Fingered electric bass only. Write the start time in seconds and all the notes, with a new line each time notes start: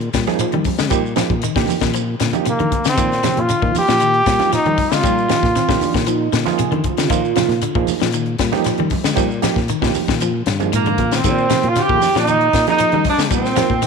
0.14 A#2
0.41 muted fingered electric bass stroke
0.54 D#3
0.80 D3
0.91 A#2
1.30 A#2
1.56 A#2
1.69 muted fingered electric bass stroke
1.81 A#2
2.21 A#2
2.47 muted fingered electric bass stroke
2.60 D#3
2.86 D3
2.98 A#2
3.37 A#2
3.62 A#2
3.76 muted fingered electric bass stroke
3.89 A#2
4.27 A#2
4.53 muted fingered electric bass stroke
4.66 D#3
4.92 D3
5.04 A#2
5.43 A#2
5.69 A#2
5.81 muted fingered electric bass stroke
5.95 A#2
6.33 A#2
6.58 muted fingered electric bass stroke
6.72 D#3
6.98 D3
7.10 A#2
7.49 A#2
7.75 A#2
8.02 A#2
8.39 A#2
8.66 muted fingered electric bass stroke
8.80 D#3
9.04 D3
9.17 A#2
9.56 A#2
9.82 A#2
10.09 A#2
10.46 G2
10.73 G#2
10.98 A#2
11.24 A#2
11.64 A#2
11.89 A#2
12.15 A#2
12.54 A#2
12.80 muted fingered electric bass stroke
12.93 D#3
13.18 D3
13.31 A#2
13.70 A#2